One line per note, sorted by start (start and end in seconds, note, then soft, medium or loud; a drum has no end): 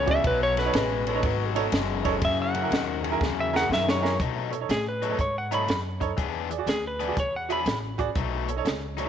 0.00 0.23 C#2 loud
0.06 0.23 E2 medium
0.06 0.24 C#3 medium
0.06 0.15 F#4 medium
0.06 0.16 G#4 medium
0.06 0.16 D5 medium
0.06 kick medium
0.06 ride medium
0.11 0.26 E5 loud
0.24 0.72 B1 medium
0.24 0.54 B2 medium
0.24 0.55 F#3 loud
0.24 0.42 B4 medium
0.24 kick loud
0.24 ride medium
0.43 0.58 C#5 loud
0.56 0.72 B2 medium
0.56 0.72 F#3 medium
0.56 0.61 A4 soft
0.56 1.54 B4 loud
0.56 0.62 C#5 medium
0.56 snare soft
0.56 ride medium
0.65 0.74 D#4 medium
0.65 0.74 A4 medium
0.65 0.74 C#5 medium
0.73 1.22 A1 loud
0.73 1.03 B2 medium
0.73 1.04 G#3 medium
0.73 snare loud
0.73 ride medium
1.07 1.22 B2 medium
1.07 1.22 G#3 medium
1.07 1.11 A4 soft
1.07 1.11 C#5 medium
1.07 ride medium
1.14 1.23 D#4 medium
1.14 1.23 A4 medium
1.14 1.24 C#5 medium
1.23 1.71 G#1 medium
1.23 1.53 B2 medium
1.23 1.53 F#3 loud
1.23 kick loud
1.23 ride medium
1.55 1.71 B2 medium
1.55 1.71 F#3 medium
1.55 1.64 D#4 loud
1.55 1.64 A4 medium
1.55 1.64 C#5 loud
1.55 ride medium
1.72 2.20 F#1 loud
1.72 2.02 B2 medium
1.72 2.02 G#3 loud
1.72 snare loud
1.72 ride medium
2.04 2.20 B2 medium
2.04 2.20 G#3 medium
2.04 2.13 D#4 medium
2.04 2.13 A4 medium
2.04 2.13 C#5 loud
2.04 kick medium
2.04 ride medium
2.22 2.70 F#2 loud
2.22 2.52 F#2 medium
2.22 2.52 C#3 loud
2.22 2.39 E5 loud
2.22 kick loud
2.22 ride loud
2.42 3.36 F#5 loud
2.54 2.70 F#2 medium
2.54 2.70 C#3 medium
2.54 2.58 G#4 soft
2.54 2.59 A#4 medium
2.54 ride medium
2.62 2.71 E4 medium
2.62 2.71 G#4 medium
2.62 2.71 A#4 medium
2.71 3.19 D#2 loud
2.71 3.01 F#2 medium
2.71 3.01 D#3 loud
2.71 snare loud
2.71 ride medium
3.02 3.19 F#2 medium
3.02 3.19 D#3 medium
3.02 3.07 G#4 soft
3.02 3.08 A#4 medium
3.02 ride medium
3.11 3.20 E4 medium
3.11 3.20 G#4 medium
3.11 3.20 A#4 medium
3.20 3.69 E2 medium
3.20 3.50 F#2 medium
3.20 3.50 C#3 medium
3.20 kick loud
3.20 snare medium
3.40 3.55 E5 loud
3.52 3.68 F#2 medium
3.52 3.69 C#3 loud
3.52 3.61 E4 medium
3.52 3.61 G#4 medium
3.52 3.62 A#4 medium
3.52 snare medium
3.56 3.71 F#5 loud
3.70 4.18 F#2 medium
3.70 3.99 F#2 medium
3.70 4.00 D#3 loud
3.70 snare medium
3.74 3.88 E5 loud
3.89 4.20 C#5 loud
3.89 snare loud
4.02 4.17 F#2 medium
4.02 4.18 D#3 medium
4.02 4.11 E4 medium
4.02 4.11 G#4 medium
4.02 4.11 A#4 medium
4.02 snare medium
4.19 4.52 B2 medium
4.19 4.68 B2 medium
4.19 4.52 F#3 medium
4.19 4.52 A3 medium
4.19 4.51 D#4 medium
4.19 kick loud
4.19 closed hi-hat medium
4.50 4.55 A4 medium
4.50 4.56 C#5 medium
4.50 muted overdriven electric guitar stroke soft
4.50 closed hi-hat medium
4.60 4.69 D#4 medium
4.60 4.69 A4 medium
4.60 4.69 C#5 medium
4.69 5.17 A2 medium
4.69 4.86 G#4 medium
4.69 muted overdriven electric guitar stroke soft
4.69 snare loud
4.69 closed hi-hat medium
4.88 5.19 B4 medium
5.01 5.18 B2 medium
5.01 5.18 F#3 medium
5.01 5.19 A3 medium
5.01 5.19 D#4 medium
5.01 5.05 A4 soft
5.01 5.06 C#5 soft
5.01 closed hi-hat medium
5.09 5.18 D#4 medium
5.09 5.18 A4 medium
5.09 5.19 C#5 medium
5.18 5.66 G#2 medium
5.18 5.36 C#5 medium
5.18 muted overdriven electric guitar stroke soft
5.18 kick loud
5.18 closed hi-hat medium
5.38 5.53 F#5 medium
5.51 5.67 B2 medium
5.51 5.68 F#3 medium
5.51 5.68 A3 medium
5.51 5.59 D#4 medium
5.51 5.68 D#4 medium
5.51 5.60 A4 medium
5.51 5.60 C#5 medium
5.51 5.79 B5 medium
5.51 closed hi-hat medium
5.68 6.16 F#2 medium
5.68 muted overdriven electric guitar stroke soft
5.68 snare loud
5.68 closed hi-hat medium
6.00 6.09 D#4 medium
6.00 6.09 A4 medium
6.00 6.09 C#5 medium
6.00 muted overdriven electric guitar stroke soft
6.00 kick medium
6.00 closed hi-hat medium
6.17 6.66 E2 medium
6.17 6.50 E3 medium
6.17 6.50 B3 medium
6.17 6.49 D4 medium
6.17 6.48 G#4 medium
6.17 kick loud
6.17 closed hi-hat medium
6.50 6.54 G#4 soft
6.50 6.55 D5 medium
6.50 muted overdriven electric guitar stroke soft
6.50 closed hi-hat medium
6.58 6.67 F#4 medium
6.58 6.67 G#4 medium
6.58 6.67 D5 medium
6.66 7.15 D2 medium
6.66 6.84 G#4 medium
6.66 muted overdriven electric guitar stroke soft
6.66 snare medium
6.66 closed hi-hat medium
6.87 7.18 B4 medium
7.00 7.16 E3 medium
7.00 7.16 B3 medium
7.00 7.17 D4 medium
7.00 7.04 G#4 soft
7.00 7.17 G#4 medium
7.00 7.04 D5 soft
7.00 closed hi-hat medium
7.08 7.16 F#4 medium
7.08 7.17 G#4 medium
7.08 7.17 D5 medium
7.17 7.65 E2 medium
7.17 7.34 C#5 medium
7.17 muted overdriven electric guitar stroke soft
7.17 kick loud
7.17 closed hi-hat medium
7.36 7.51 F#5 medium
7.49 7.66 E3 medium
7.49 7.66 B3 medium
7.49 7.67 D4 medium
7.49 7.58 F#4 medium
7.49 7.58 G#4 medium
7.49 7.67 G#4 medium
7.49 7.58 E5 medium
7.49 7.78 B5 medium
7.49 closed hi-hat medium
7.66 8.14 A1 medium
7.66 muted overdriven electric guitar stroke soft
7.66 snare loud
7.66 closed hi-hat medium
7.98 8.07 F#4 medium
7.98 8.07 G#4 medium
7.98 8.08 D5 medium
7.98 muted overdriven electric guitar stroke medium
7.98 kick medium
7.98 closed hi-hat medium
8.15 8.64 B1 medium
8.15 8.49 B2 medium
8.15 8.49 F#3 medium
8.15 8.48 A3 medium
8.15 8.48 D#4 medium
8.15 kick loud
8.15 closed hi-hat medium
8.48 8.52 A4 medium
8.48 8.53 C#5 medium
8.48 muted overdriven electric guitar stroke medium
8.48 closed hi-hat medium
8.56 8.65 D#4 medium
8.56 8.66 A4 medium
8.56 8.66 C#5 medium
8.65 9.09 C#2 medium
8.65 muted overdriven electric guitar stroke soft
8.65 snare loud
8.65 closed hi-hat medium
8.97 9.09 B2 medium
8.97 9.09 F#3 medium
8.97 9.09 A3 medium
8.97 9.09 D#4 medium
8.97 9.02 A4 soft
8.97 9.03 C#5 medium
8.97 closed hi-hat medium